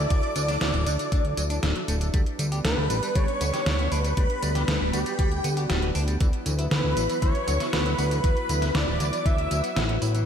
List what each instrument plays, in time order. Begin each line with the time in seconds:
Already playing: analog synth pad F#3 D4 E4 A4, analog synth lead D5, string machine D6
0.10 analog synth bass D2, clean electric guitar D3, kick, closed hi-hat, tambourine
0.23 closed hi-hat
0.36 analog synth bass D2, clean electric guitar D3, closed hi-hat, tambourine
0.48 clean electric guitar D4, snare, closed hi-hat, tambourine
0.61 analog synth bass D2, clean electric guitar D3, snare, closed hi-hat, tambourine
0.74 analog synth bass D1, clean electric guitar D3, closed hi-hat
0.87 analog synth bass D2, clean electric guitar D3, closed hi-hat, tambourine
0.99 clean electric guitar D3, closed hi-hat, tambourine
1.12 analog synth bass D2, clean electric guitar D3, kick, closed hi-hat, tambourine
1.25 closed hi-hat
1.37 analog synth bass D2, clean electric guitar F#3, closed hi-hat, tambourine
1.50 clean electric guitar D4, closed hi-hat, tambourine
1.63 analog synth bass D1, clean electric guitar D3, snare, closed hi-hat, tambourine
1.76 clean electric guitar F#3, closed hi-hat
1.88 analog synth bass D1, clean electric guitar A3, closed hi-hat, tambourine
2.01 clean electric guitar D3, closed hi-hat, tambourine
2.14 analog synth bass D2, clean electric guitar G3, analog synth pad G3 B3 B4, kick, closed hi-hat, tambourine
2.26 closed hi-hat
2.39 analog synth bass D2, clean electric guitar G3, closed hi-hat, tambourine
2.52 clean electric guitar G4, closed hi-hat, tambourine
2.65 analog synth bass D2, clean electric guitar G3, analog synth lead B4, string machine B5, snare, closed hi-hat, tambourine
2.77 analog synth bass D2, clean electric guitar G3
2.90 analog synth bass A1, clean electric guitar G3, closed hi-hat, tambourine
3.03 clean electric guitar G3, closed hi-hat, tambourine
3.15 analog synth bass D2, clean electric guitar G3, analog synth lead C#5, string machine C#6, kick, closed hi-hat, tambourine
3.28 closed hi-hat
3.41 analog synth bass D2, clean electric guitar B3, closed hi-hat, tambourine
3.54 clean electric guitar G4, snare, closed hi-hat, tambourine
3.66 analog synth bass D2, clean electric guitar G3, snare, closed hi-hat, tambourine
3.79 clean electric guitar B3, closed hi-hat
3.91 analog synth bass D2, clean electric guitar D4, analog synth lead B4, string machine B5, open hi-hat, tambourine
4.04 clean electric guitar G3, closed hi-hat, tambourine
4.17 analog synth bass D2, clean electric guitar G3, kick, closed hi-hat, tambourine
4.30 closed hi-hat
4.43 analog synth bass D2, clean electric guitar G3, closed hi-hat, tambourine
4.55 clean electric guitar G4, snare, closed hi-hat, tambourine
4.68 analog synth bass D2, clean electric guitar G3, snare, closed hi-hat, tambourine
4.81 analog synth bass D1, clean electric guitar G3
4.93 analog synth bass D2, clean electric guitar G3, analog synth lead G4, string machine G5, closed hi-hat, tambourine
5.06 clean electric guitar G3, closed hi-hat, tambourine
5.19 analog synth bass D2, clean electric guitar G3, kick, closed hi-hat, tambourine
5.32 closed hi-hat
5.44 analog synth bass D2, clean electric guitar B3, closed hi-hat, tambourine
5.57 analog synth lead F#4, clean electric guitar G4, string machine F#5, closed hi-hat, tambourine
5.70 analog synth bass D1, clean electric guitar G3, snare, closed hi-hat, tambourine
5.82 clean electric guitar B3, closed hi-hat
5.95 analog synth bass D2, clean electric guitar D4, open hi-hat, tambourine
6.08 clean electric guitar G3, closed hi-hat, tambourine
6.20 analog synth bass D2, clean electric guitar E3, analog synth pad F#3 E4 B4, kick, closed hi-hat, tambourine
6.33 closed hi-hat
6.46 analog synth bass D2, clean electric guitar E3, closed hi-hat, tambourine
6.59 clean electric guitar E4, closed hi-hat, tambourine
6.71 analog synth bass D2, clean electric guitar E3, analog synth lead B4, string machine B5, snare, closed hi-hat, tambourine
6.84 analog synth bass D2, clean electric guitar E3
6.97 analog synth bass A1, clean electric guitar E3, closed hi-hat, tambourine
7.09 clean electric guitar E3, closed hi-hat, tambourine
7.22 analog synth bass D2, clean electric guitar E3, analog synth lead C#5, string machine C#6, kick, closed hi-hat, tambourine
7.35 closed hi-hat
7.48 analog synth bass D2, clean electric guitar F#3, closed hi-hat, tambourine
7.60 clean electric guitar E4, snare, closed hi-hat, tambourine
7.73 analog synth bass D2, clean electric guitar E3, analog synth lead B4, string machine B5, snare, closed hi-hat, tambourine
7.86 clean electric guitar F#3, closed hi-hat
7.98 analog synth bass D2, clean electric guitar B3, open hi-hat, tambourine
8.11 clean electric guitar E3, closed hi-hat, tambourine
8.24 analog synth bass D2, clean electric guitar E3, analog synth lead B4, string machine B5, kick, closed hi-hat, tambourine
8.37 closed hi-hat
8.49 analog synth bass D2, clean electric guitar E3, closed hi-hat, tambourine
8.62 clean electric guitar E4, snare, closed hi-hat, tambourine
8.75 analog synth bass D2, clean electric guitar E3, analog synth lead D5, string machine D6, snare, closed hi-hat, tambourine
8.87 analog synth bass D1, clean electric guitar E3
9.00 analog synth bass D2, clean electric guitar E3, closed hi-hat, tambourine
9.13 clean electric guitar E3, closed hi-hat, tambourine
9.26 analog synth bass D2, clean electric guitar E3, analog synth lead E5, string machine E6, kick, closed hi-hat, tambourine
9.38 closed hi-hat
9.51 analog synth bass D2, clean electric guitar F#3, closed hi-hat, tambourine
9.64 clean electric guitar B3, closed hi-hat, tambourine
9.76 analog synth bass A1, clean electric guitar B3, snare, closed hi-hat, tambourine
9.89 clean electric guitar B3, closed hi-hat
10.02 analog synth bass A1, clean electric guitar E4, open hi-hat, tambourine
10.14 clean electric guitar E3, closed hi-hat, tambourine